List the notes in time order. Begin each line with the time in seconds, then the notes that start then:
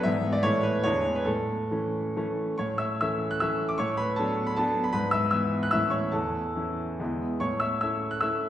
0.03 G#2 E3 B3 E4 E5
0.33 D5
0.43 A2 E3 A3 E4 C#5
0.63 B4
0.83 E2 E3 G#3 D4 C#5
1.15 B4
1.25 A2 A4
1.71 E3 A3 C#4
2.16 E3 A3 C#4
2.58 A2 C#5 C#6
2.78 E5 E6
3.01 E3 A3 C#4 E5 E6
3.31 F#6
3.40 E3 A3 C#4 E5 E6
3.69 D6
3.78 A2 C#5 C#6
3.97 B4 B5
4.16 F#3 B3 D4 A4 A5
4.47 B5
4.56 F#3 B3 D4 A4 A5
4.84 B5
4.93 G#2 B4 B5
5.11 E5 E6
5.31 E3 B3 E4 E5 E6
5.63 F#6
5.71 A2 E3 C#4 E4 E5 E6
5.90 C#5 C#6
6.12 E2 A4 A5
6.55 E3 C#4 E4
7.00 E2 G#3 B3 E4
7.40 A2 C#5 C#6
7.60 E5 E6
7.81 A3 C#4 E4 E5 E6
8.11 F#6
8.21 A3 C#4 E4 E5 E6